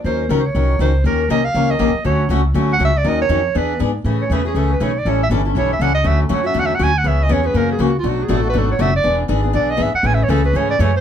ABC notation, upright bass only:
X:1
M:4/4
L:1/8
Q:"Swing" 1/4=240
K:Ebdor
V:1 name="Upright bass" clef=bass
E,,2 D,,2 C,,2 D,,2 | E,,2 C,,2 D,,2 B,,, z | =D,,2 ^C,,2 D,,2 C,,2 | E,,2 F,,2 =E,,2 ^G,,2 |
[K:A] A,,2 E,,2 C,,2 B,,,2 | A,,,2 =G,,,2 B,,,2 C,,2 | D,,2 F,,2 E,,2 D,,2 | C,,2 E,,2 F,,2 C,,2 |
B,,,2 A,,,2 G,,,2 F,,,2 | E,,,2 G,,,2 B,,,2 G,,, z | A,,,2 C,,2 G,,2 F,,2 |]